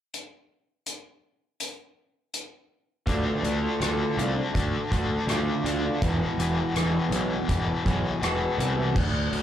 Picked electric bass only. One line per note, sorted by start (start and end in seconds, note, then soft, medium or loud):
3.07 3.29 D2 medium
3.43 3.66 D2 medium
3.80 4.03 D2 medium
4.17 4.40 C2 medium
4.55 4.77 D2 medium
4.92 5.14 D2 medium
5.27 5.50 D2 medium
5.64 5.87 D2 medium
6.02 6.24 E1 medium
6.38 6.60 E1 medium
6.74 6.97 E1 medium
7.10 7.33 B1 medium
7.49 7.71 E1 medium
7.85 8.08 B1 medium
8.23 8.45 E1 medium
8.58 8.95 C2 medium
8.95 9.28 D2 medium
9.33 9.43 D2 medium